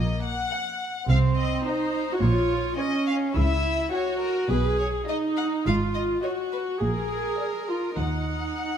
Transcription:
0.00 0.40 A#1 medium
0.00 0.40 A#2 medium
0.00 0.20 A#3 medium
0.00 0.23 D#5 soft
0.25 1.07 F#5 medium
0.51 0.59 F#5 soft
1.07 1.53 C2 medium
1.07 1.53 C3 medium
1.07 1.61 C4 medium
1.07 1.17 F5 medium
1.36 1.64 D#5 medium
1.64 2.15 D#4 medium
1.64 2.20 C5 medium
1.64 2.08 D#5 soft
2.14 2.21 F#4 medium
2.20 2.67 A#1 medium
2.20 2.67 A#2 medium
2.20 2.79 F4 medium
2.20 2.77 C#5 soft
2.78 3.35 C#4 medium
2.78 3.22 C#5 soft
2.78 3.07 D#5 medium
3.07 3.15 F5 soft
3.35 3.81 C#2 medium
3.35 3.82 C#3 medium
3.35 3.93 E4 medium
3.35 3.92 E5 medium
3.92 4.50 F#4 medium
3.92 4.21 C#5 soft
3.92 4.36 F#5 soft
4.22 4.50 A#4 soft
4.50 4.96 B1 medium
4.50 4.97 B2 medium
4.50 5.09 G#4 medium
4.50 4.79 B4 soft
4.79 4.87 C#5 soft
5.08 5.65 D#4 medium
5.08 5.51 D#5 soft
5.08 5.17 D#5 medium
5.37 5.45 F#5 soft
5.66 6.11 G#1 soft
5.66 6.11 G#2 medium
5.66 6.23 F4 medium
5.66 5.74 F5 medium
5.95 6.03 D#5 soft
6.23 6.80 F#4 medium
6.23 6.31 C#5 soft
6.23 6.66 D#5 soft
6.52 6.60 B4 soft
6.80 7.27 A#1 soft
6.80 7.27 A#2 soft
6.80 7.68 G#4 medium
6.80 7.96 A#4 soft
7.39 7.83 D5 soft
7.69 7.98 F4 soft
7.98 8.45 D#2 soft
7.98 8.45 D#3 soft
7.98 8.78 D#4 soft
7.98 8.78 F#5 soft
8.58 8.78 F#5 soft

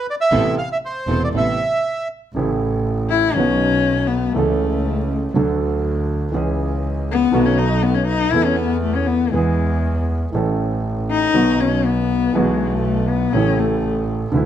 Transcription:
0.10 0.15 D5 medium
0.21 0.55 E5 medium
0.31 0.53 A1 medium
0.31 0.53 A2 medium
0.31 0.53 C3 medium
0.31 0.53 A3 medium
0.31 0.53 B3 medium
0.31 0.53 C4 medium
0.31 0.54 E4 medium
0.31 0.53 A4 medium
0.58 0.69 F5 medium
0.72 0.78 E5 medium
0.85 1.23 C5 medium
1.07 1.29 E1 medium
1.07 1.29 E1 soft
1.07 1.29 E2 soft
1.07 1.29 C3 soft
1.07 1.29 A3 soft
1.07 1.29 B3 soft
1.07 1.29 C4 soft
1.07 1.29 E4 soft
1.07 1.29 A4 soft
1.24 1.29 D5 medium
1.32 1.54 A1 soft
1.32 1.55 A1 soft
1.32 1.55 A2 soft
1.32 1.55 C3 soft
1.32 1.55 A3 soft
1.32 1.54 B3 soft
1.32 1.55 B3 soft
1.32 1.54 C4 soft
1.32 1.55 E4 soft
1.32 1.55 A4 soft
1.37 2.08 E5 medium
2.34 3.30 A1 medium
2.34 3.31 A1 medium
2.34 3.32 A2 medium
2.34 3.31 C#3 soft
2.34 3.31 E3 soft
2.34 3.32 A3 soft
2.39 3.33 E4 medium
3.10 3.36 E4 medium
3.34 4.31 B1 medium
3.34 4.32 B2 medium
3.34 4.30 D#3 medium
3.34 4.31 F#3 soft
3.34 4.32 B3 soft
3.34 4.09 C#4 medium
3.39 4.32 F#4 medium
4.07 4.34 B3 medium
4.32 5.30 C#2 medium
4.32 5.29 E3 medium
4.32 5.33 A3 medium
4.32 5.30 A3 soft
4.36 5.30 C#3 medium
4.36 5.30 C#4 soft
4.36 5.31 A4 medium
5.34 6.29 D2 medium
5.34 6.29 D3 medium
5.34 6.28 F#3 medium
5.34 6.29 A3 soft
5.34 6.30 D4 medium
5.34 6.30 A4 medium
6.32 7.28 C#2 medium
6.32 7.28 C#3 medium
6.32 7.27 E3 medium
6.32 7.28 G#3 soft
6.32 7.29 C#4 soft
6.36 7.29 G#4 medium
7.12 7.47 B3 medium
7.31 8.28 B1 medium
7.31 8.28 B2 medium
7.31 8.27 D#3 medium
7.31 8.28 A3 medium
7.31 8.28 B3 soft
7.31 8.29 F#4 medium
7.46 7.60 C#4 medium
7.58 7.85 D#4 medium
7.83 7.96 B3 medium
7.94 8.07 C#4 medium
8.08 8.34 D#4 medium
8.32 9.28 E2 medium
8.32 9.28 E3 medium
8.32 9.28 A3 soft
8.32 9.29 B3 soft
8.32 8.46 E4 loud
8.36 9.30 A4 medium
8.45 8.58 C#4 medium
8.57 8.82 B3 medium
8.82 8.97 A3 medium
8.95 9.09 C#4 medium
9.07 9.33 B3 medium
9.31 10.29 E2 medium
9.31 9.33 E3 medium
9.31 10.29 E3 medium
9.31 10.08 G#3 medium
9.31 10.29 G#3 soft
9.31 10.30 B3 soft
9.36 10.30 G#4 medium
10.32 11.29 A1 medium
10.32 11.30 A1 medium
10.32 11.30 A2 medium
10.32 11.29 E3 soft
10.32 11.29 A3 soft
10.32 11.30 C#4 soft
10.32 11.30 A4 medium
11.11 11.62 D#4 loud
11.33 12.29 B1 medium
11.33 12.29 B2 medium
11.33 12.28 D#3 medium
11.33 12.29 F#3 medium
11.33 12.30 B3 soft
11.33 12.30 F#4 medium
11.60 11.87 C#4 medium
11.85 12.37 B3 medium
12.33 13.28 B1 medium
12.33 13.28 B2 medium
12.33 13.27 E3 medium
12.33 12.74 G#3 medium
12.33 13.29 B3 soft
12.33 13.28 G#4 soft
12.37 13.29 F#4 medium
12.73 13.11 A3 medium
13.09 13.34 B3 medium
13.33 14.27 A1 medium
13.33 14.28 A1 medium
13.33 14.28 A2 medium
13.33 14.27 C#3 medium
13.33 14.27 E3 medium
13.33 14.28 A3 soft
13.33 13.60 C#4 medium
13.37 14.29 E4 medium
13.59 14.08 A3 medium
14.32 14.46 D2 medium
14.32 14.46 D3 medium
14.32 14.46 E3 soft
14.32 14.46 A3 soft
14.36 14.46 E4 medium

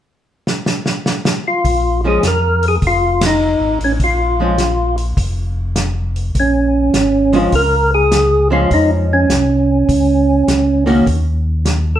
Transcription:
0.47 snare medium
0.66 snare medium
0.86 snare medium
1.06 snare medium
1.25 snare medium
1.48 2.01 F4 medium
1.64 2.19 A#1 medium
1.64 kick soft
1.64 open hi-hat soft
2.04 2.21 F3 soft
2.04 2.22 G#3 medium
2.04 2.22 C#4 medium
2.04 2.24 G#4 medium
2.23 2.78 F2 medium
2.23 snare medium
2.23 closed hi-hat soft
2.27 2.66 A#4 medium
2.63 open hi-hat soft
2.68 2.76 G#4 medium
2.82 3.56 F1 medium
2.82 kick soft
2.82 open hi-hat soft
2.87 3.25 F4 medium
3.21 snare medium
3.21 ride medium
3.26 3.79 D#4 medium
3.60 3.78 G#1 medium
3.79 3.98 A1 medium
3.79 open hi-hat soft
3.84 3.92 C#4 medium
3.99 5.13 A#1 medium
3.99 kick soft
3.99 open hi-hat soft
4.04 4.96 F4 medium
4.40 4.57 F3 soft
4.40 4.57 G#3 soft
4.40 4.58 C#4 soft
4.58 snare medium
4.58 closed hi-hat soft
4.98 open hi-hat soft
5.17 6.31 F1 medium
5.17 kick soft
5.17 open hi-hat soft
5.76 snare medium
5.76 closed hi-hat medium
6.16 open hi-hat soft
6.35 6.90 A#1 medium
6.35 kick soft
6.35 open hi-hat soft
6.40 7.38 C#4 medium
6.93 7.48 G#1 medium
6.93 snare medium
6.93 closed hi-hat soft
7.33 7.51 F3 medium
7.33 7.51 G#3 medium
7.33 7.51 C#4 medium
7.33 7.55 F4 medium
7.33 open hi-hat soft
7.52 8.66 C#2 medium
7.52 7.91 A#4 loud
7.52 kick soft
7.52 open hi-hat soft
7.94 8.48 G#4 loud
8.12 snare medium
8.12 closed hi-hat medium
8.50 9.25 F3 medium
8.50 9.25 G#3 medium
8.50 9.26 C#4 medium
8.50 8.70 F4 medium
8.71 9.25 F2 medium
8.71 8.91 D#4 medium
8.71 kick soft
8.71 open hi-hat soft
9.13 10.84 C#4 medium
9.29 9.84 C2 medium
9.29 snare medium
9.29 closed hi-hat soft
9.88 10.43 C#2 medium
9.88 kick soft
9.88 open hi-hat soft
10.47 11.02 C#2 medium
10.47 snare medium
10.47 closed hi-hat medium
10.86 11.04 D#3 medium
10.86 11.04 A#3 medium
10.86 11.04 C#4 medium
10.86 11.04 F#4 medium
10.86 open hi-hat soft
11.06 12.00 D#2 medium
11.06 kick soft
11.06 open hi-hat soft
11.65 snare medium
11.65 closed hi-hat soft
11.96 12.00 A4 medium

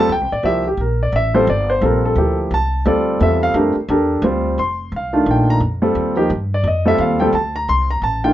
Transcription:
0.00 0.11 A5 loud
0.09 0.21 D2 medium
0.09 0.32 G5 medium
0.21 0.32 C2 medium
0.32 0.43 A1 medium
0.32 0.45 D5 medium
0.43 0.77 C2 medium
0.43 0.63 F3 medium
0.43 0.63 A#3 medium
0.43 0.63 E4 medium
0.43 0.63 G4 medium
0.43 0.66 E5 loud
0.68 0.79 G4 medium
0.77 1.12 A#1 medium
0.77 1.01 A#4 medium
1.03 1.14 D5 medium
1.12 1.46 A1 medium
1.12 1.35 E5 loud
1.34 1.46 G3 medium
1.34 1.46 C4 medium
1.34 1.47 F4 medium
1.34 1.47 A4 medium
1.34 1.47 C5 medium
1.47 1.81 G1 medium
1.47 1.70 D5 medium
1.70 1.82 C5 medium
1.81 2.15 A#1 medium
1.81 2.15 G3 medium
1.81 2.15 C4 medium
1.81 2.16 F4 medium
1.81 2.04 A4 medium
1.81 2.05 A#4 medium
2.05 2.37 A4 medium
2.16 2.50 D2 loud
2.16 2.51 F3 medium
2.16 2.52 A#3 medium
2.16 2.52 E4 medium
2.16 2.52 G4 medium
2.51 2.84 C2 medium
2.51 2.85 A5 medium
2.86 3.19 D2 medium
2.86 3.19 G3 medium
2.86 3.19 C4 medium
2.86 3.19 F4 medium
2.86 3.19 A4 medium
2.86 3.19 D5 medium
3.20 3.53 E2 loud
3.20 3.72 G3 medium
3.20 3.72 C4 medium
3.20 3.72 F4 medium
3.20 3.72 A4 medium
3.20 3.42 E5 medium
3.43 3.55 F5 loud
3.54 3.74 F2 loud
3.54 3.74 A3 medium
3.54 3.74 D4 medium
3.54 3.74 G4 medium
3.54 3.74 A#4 medium
3.75 muted upright bass stroke soft
3.88 4.21 E2 medium
3.88 4.23 D4 medium
3.88 4.23 G4 medium
3.88 4.23 A4 medium
3.88 4.23 A#4 medium
4.22 4.56 D2 loud
4.22 4.58 G3 medium
4.22 4.58 C4 medium
4.22 4.58 F4 medium
4.22 4.58 C5 medium
4.58 4.91 F1 medium
4.58 4.91 C6 medium
4.92 5.26 C2 medium
4.96 5.27 F5 medium
5.13 5.58 D#3 medium
5.13 5.59 A3 medium
5.13 5.59 D4 medium
5.13 5.59 F4 medium
5.26 5.60 A#1 loud
5.31 5.50 G5 medium
5.50 5.58 A#5 loud
5.60 5.94 F2 medium
5.82 6.15 G3 medium
5.82 6.15 C4 medium
5.82 6.15 F4 medium
5.82 6.15 A4 medium
5.95 6.29 D#2 medium
6.16 6.29 F3 medium
6.16 6.29 A#3 medium
6.16 6.29 D#4 medium
6.16 6.29 G4 medium
6.30 6.63 G2 medium
6.54 6.66 D5 medium
6.64 6.98 F2 medium
6.64 6.87 D#5 medium
6.86 7.18 G3 medium
6.86 7.18 C4 medium
6.86 7.18 F4 medium
6.86 7.19 A4 medium
6.86 7.00 E5 loud
6.98 7.32 D#2 loud
6.98 7.21 F5 medium
7.20 7.33 G3 medium
7.20 7.33 C4 medium
7.20 7.33 F4 medium
7.20 7.33 A4 medium
7.20 7.33 G5 medium
7.33 7.67 D2 medium
7.33 7.55 A5 medium
7.56 7.68 A#5 medium
7.68 8.01 C2 medium
7.68 7.89 C6 loud
7.91 8.03 A#5 medium
8.02 8.33 A1 medium
8.02 8.24 A5 medium
8.24 8.33 D#3 medium
8.24 8.33 A3 medium
8.24 8.33 D4 medium
8.24 8.33 F4 medium
8.24 8.33 G5 medium

